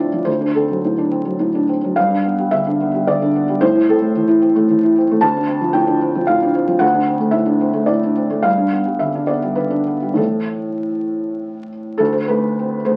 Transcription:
Already playing: D2 A2 F3 D4 D5 E5 F5
0.00 C4
0.13 F3
0.25 D2 C5
0.41 D4
0.55 C4 A4
0.71 F#3
0.85 A2
0.98 D4
1.11 C4
1.25 F#3
1.40 A2
1.55 D4
1.69 C4
1.84 F#3
1.96 G2 F5
2.10 D4
2.25 B3
2.40 G3
2.51 D3 E5
2.66 D4
2.81 B3
2.94 G3
3.07 D3 D5
3.22 D4
3.36 B3
3.49 G3
3.61 A2 C5
3.75 E4
3.89 C4 A4
4.02 A3
4.16 E3
4.28 E4
4.42 C4
4.56 A3
4.70 E3
4.83 E4
4.98 C4
5.11 A3
5.21 D2 A5
5.36 D4
5.48 C4
5.61 F3
5.73 A2 G5
5.87 D4
6.02 C4
6.16 F3
6.27 A2 F5
6.42 D4
6.55 C4
6.68 F3
6.79 D2 F#5
6.94 D4
7.07 C4
7.20 A3
7.31 A2 E5
7.46 D4
7.61 C4
7.74 A3
7.86 A2 D5
8.03 D4
8.17 C4
8.30 A3
8.43 G2 F5
8.57 D4
8.71 B3
8.85 G3
8.99 D3 E5
9.15 D4
9.27 B3 D5
9.42 G3
9.56 D3 B4
9.70 D4
9.87 B3
10.02 G3
10.14 A2 E3 A3 C4 A4
11.98 D2 A4
12.13 C5
12.28 A3 B4
12.59 C4
12.85 A3 C5

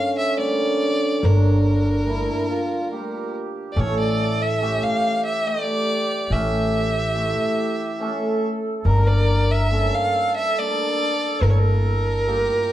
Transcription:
Already playing: D3 G3 C#4 F5
0.18 E5
0.37 D3 G3 A#3 D5
1.21 G1 G3 A#3 D4 A#4 C#5
2.06 G3 A#3 D4 E4
2.49 F4
2.91 G3 A#3 F4 G4
3.72 E3 A3 D5
3.76 A1 C#4 A4 C#5
3.99 D5
4.42 E5
4.61 E3 A3 C#4 G4
4.83 F5
5.25 E5
5.45 E3 A3 E4 D5
6.30 A1 E3 A3 C#4 E5
7.15 E3 A3 E4
8.00 E3 A3 C#4 A4
8.78 A4
8.85 G1 G3 A#3 D4 A#4
9.07 D5
9.51 E5
9.70 G3 A#3 C#4 A4
9.95 F5
10.36 E5
10.57 G3 A#3 D4 D5
11.41 G1 G3 A#3 E4 A#4
11.50 C#5
11.58 A#4
12.28 G3 A#3 F4 G4

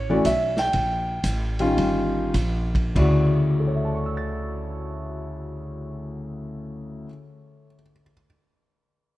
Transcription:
Already playing: A1 C#5
0.10 E3 A3 C#4 F#4 D5
0.25 B1 E5, kick, hi-hat pedal, ride
0.57 G5, snare
0.73 A#1, kick, ride
1.24 A1, kick, hi-hat pedal, ride
1.59 D#3 G3 C#4 F4, ride
1.77 G1, kick, ride
2.34 A#1, kick, hi-hat pedal, ride
2.75 kick, ride
2.95 D2 C#3 E4 F#4 D5, kick, crash
3.60 A4
3.67 C#5
3.75 E5
3.85 A5
3.95 C#6
4.06 E6
4.17 A6

